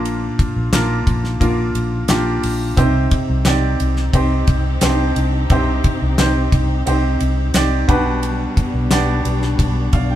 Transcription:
Already playing: A#1 A#2 A#3 D4 F4 A#4
0.05 ride
0.39 kick, ride
0.56 A#1
0.73 A#1 A#3 D4 F4 A#4, snare, clap, ride
1.07 A#1, kick, ride
1.24 snare
1.40 A#1 A#3 D4 F4 A#4, kick, ride
1.75 A#1, ride
2.08 A#1 A#3 D4 F4 G4, snare, clap, ride
2.43 A#1, open hi-hat, ride
2.77 C2 C3 C4 D#4 G4 C5, kick, hi-hat pedal, ride
3.11 kick, ride
3.30 C2
3.45 C2 C4 D#4 G4 D5, snare, clap, ride
3.80 C2, ride
3.96 snare
4.13 C2 C4 D#4 G4 C5, kick, ride
4.47 C2, kick, ride
4.81 C2 C4 D4 G4 C5, snare, clap, ride
4.89 D#4
5.16 C2, ride
5.50 C2 C3 C4 D#4 G4 C5, kick, ride
5.84 kick, ride
6.02 C2
6.18 C2 C4 D#4 G4 C5, snare, clap, ride
6.52 C2, kick, ride
6.86 C2 C4 D#4 G4 C5, ride
7.20 C2, ride
7.54 C2 C4 D#4 G4 D5, snare, clap, ride
7.87 B1 B2 G3 B3 D4 G4 B4, kick, ride
8.23 ride
8.57 kick, ride
8.74 B1
8.91 B1 B3 D4 G4 D5, snare, clap, ride
9.25 B1, ride
9.42 snare
9.59 B1, kick, ride
9.93 B1 D5 F5, kick, ride
10.11 G5

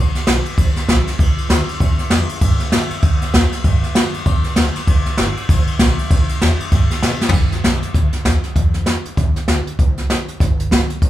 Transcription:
Already playing: C2
0.14 muted upright bass stroke, snare, ride
0.27 B1, snare, ride
0.45 muted upright bass stroke, ride
0.58 A1, kick, ride
0.75 muted upright bass stroke, snare, ride
0.88 B1, kick, snare, ride
1.07 snare, ride
1.19 C2, kick, ride
1.38 ride
1.49 D2, snare, ride
1.69 ride
1.80 E2, kick, ride
1.98 muted upright bass stroke, snare, ride
2.10 F2, snare, ride
2.29 muted upright bass stroke, ride
2.41 G2, kick, ride
2.60 muted upright bass stroke, snare, ride
2.72 A2, snare, ride
2.90 muted upright bass stroke, ride
3.02 B2, kick, ride
3.22 snare, ride
3.33 E2, kick, snare, ride
3.52 snare, ride
3.64 G2, kick, ride
3.83 muted upright bass stroke, snare, ride
3.95 snare, ride
4.13 muted upright bass stroke, ride
4.26 E2, kick, ride
4.44 muted upright bass stroke, snare, ride
4.56 D2, snare, ride
4.75 snare, ride
4.87 C2, kick, ride
5.06 muted upright bass stroke, snare, ride
5.17 G1, snare, ride
5.36 muted upright bass stroke, ride
5.49 A1, kick, snare, ride
5.67 muted upright bass stroke, ride
5.79 B1, kick, snare, ride
5.98 muted upright bass stroke, ride
6.10 C2, kick, ride
6.29 muted upright bass stroke, ride
6.41 E2, snare, ride
6.60 muted upright bass stroke, ride
6.72 G2, kick, snare, ride
6.90 muted upright bass stroke, snare, ride
7.03 B2, snare, ride
7.21 muted upright bass stroke, snare
7.29 C2, floor tom
7.33 kick, crash
7.52 muted upright bass stroke, snare, closed hi-hat
7.64 C2, snare, closed hi-hat
7.82 muted upright bass stroke, closed hi-hat
7.94 D2, kick, snare, closed hi-hat
8.12 muted upright bass stroke, snare, closed hi-hat
8.25 E2, kick, snare, closed hi-hat
8.43 muted upright bass stroke, snare, closed hi-hat
8.55 F2, kick, closed hi-hat
8.74 snare, closed hi-hat
8.86 snare, closed hi-hat
9.05 muted upright bass stroke, closed hi-hat
9.17 E2, kick, closed hi-hat
9.36 muted upright bass stroke, snare, closed hi-hat
9.48 D2, snare, closed hi-hat
9.67 closed hi-hat
9.79 C2, kick, closed hi-hat
9.97 snare, closed hi-hat
10.10 snare, closed hi-hat
10.28 muted upright bass stroke, closed hi-hat
10.40 G1, kick, snare, closed hi-hat
10.60 closed hi-hat
10.71 kick, snare, closed hi-hat
10.89 muted upright bass stroke, closed hi-hat
11.02 C2, kick, closed hi-hat

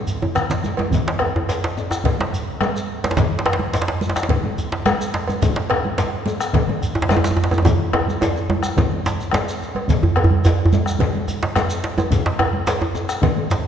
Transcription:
0.07 high conga, shekere
0.22 djembe tone, low conga, djembe bass
0.35 bombo rim, cowbell, low conga, djembe bass, shekere
0.49 bombo rim, djembe slap, low conga, djembe bass, shekere
0.63 bombo rim, djembe slap, high conga, shekere
0.77 cowbell, djembe slap, high conga, djembe tone
0.91 bombo low, djembe slap, low conga, djembe bass, shekere
1.07 djembe slap, high conga
1.19 bombo rim, cowbell, djembe tone
1.36 djembe tone
1.49 cowbell, djembe slap, shekere
1.64 djembe slap
1.77 djembe tone, shekere
1.91 bombo rim, djembe tone, shekere
2.04 bombo low, cowbell, djembe slap, low conga, djembe bass
2.19 djembe slap, high conga, djembe tone
2.33 bombo rim, shekere
2.61 bombo rim, cowbell, djembe slap, djembe tone, high conga, shekere
2.76 bombo rim, shekere
3.04 cowbell, djembe slap, high conga, djembe tone, shekere
3.11 djembe slap
3.17 bombo low, djembe slap, low conga, shekere
3.18 djembe slap, djembe bass
3.31 djembe slap, high conga
3.39 djembe slap
3.46 bombo rim, cowbell, djembe slap
3.53 djembe slap
3.59 high conga
3.73 cowbell, djembe slap, shekere
3.82 djembe slap
3.88 djembe slap
4.01 high conga, shekere
4.09 djembe slap
4.16 bombo rim, djembe slap, shekere
4.23 djembe slap
4.29 bombo low, cowbell, djembe slap, low conga, djembe bass
4.44 high conga, djembe tone
4.58 bombo rim, shekere
4.72 djembe slap
4.86 bombo rim, cowbell, djembe slap, djembe tone, high conga, shekere
5.01 bombo rim, shekere
5.14 djembe slap
5.27 cowbell, high conga, djembe tone, shekere
5.42 bombo low, djembe slap, djembe bass, low conga, shekere
5.56 djembe slap, high conga
5.58 djembe slap
5.70 bombo rim, cowbell, djembe tone
5.85 high conga
5.98 cowbell, djembe slap, shekere
6.26 high conga, djembe tone, shekere
6.40 bombo rim, shekere
6.53 bombo low, cowbell, djembe slap, djembe bass, low conga
6.69 djembe tone, high conga
6.82 bombo rim, shekere
6.95 djembe tone
7.02 djembe slap
7.09 bombo rim, cowbell, djembe slap, djembe tone, high conga, shekere
7.16 djembe tone
7.24 bombo rim, djembe slap, shekere
7.31 djembe tone
7.37 djembe tone
7.44 djembe slap
7.51 cowbell, djembe tone, high conga, shekere
7.58 djembe tone
7.65 bombo low, djembe slap, djembe tone, high conga, low conga, djembe bass, shekere
7.93 bombo rim, cowbell, djembe slap, djembe tone
8.08 djembe slap, high conga, shekere
8.21 cowbell, djembe slap, high conga, djembe tone, shekere
8.36 djembe slap, shekere
8.50 djembe tone, high conga
8.63 bombo rim, high conga, shekere
8.77 bombo low, cowbell, djembe slap, high conga, djembe tone, low conga, djembe bass, shekere
8.92 high conga, djembe tone
9.05 djembe slap, high conga, shekere
9.20 djembe slap, high conga, shekere
9.31 bombo rim, cowbell, djembe slap, high conga, djembe tone, shekere
9.47 bombo rim, high conga, shekere
9.60 bombo rim, djembe slap, shekere
9.75 cowbell, high conga, djembe tone
9.88 bombo low, djembe slap, low conga, djembe bass, shekere
10.03 djembe slap, high conga, djembe bass
10.16 bombo rim, cowbell, djembe tone
10.24 djembe bass
10.31 high conga
10.45 cowbell, djembe slap, djembe bass, shekere
10.66 djembe bass
10.73 high conga, djembe tone, shekere
10.86 bombo rim, shekere
10.99 bombo low, cowbell, djembe slap, low conga, djembe bass
11.15 high conga, djembe tone
11.28 bombo rim, shekere
11.43 djembe slap
11.56 bombo rim, cowbell, djembe slap, djembe tone, high conga, shekere
11.70 bombo rim, shekere
11.84 djembe slap
11.98 cowbell, djembe tone, high conga, shekere
12.11 bombo low, djembe slap, low conga, djembe bass, shekere
12.26 djembe slap
12.39 bombo rim, cowbell, djembe tone
12.53 high conga
12.67 cowbell, djembe slap, shekere
12.82 djembe tone
12.95 djembe tone, shekere
13.09 bombo rim, shekere
13.22 bombo low, cowbell, djembe slap, djembe bass, low conga
13.37 high conga, djembe tone
13.50 bombo rim, djembe slap, shekere

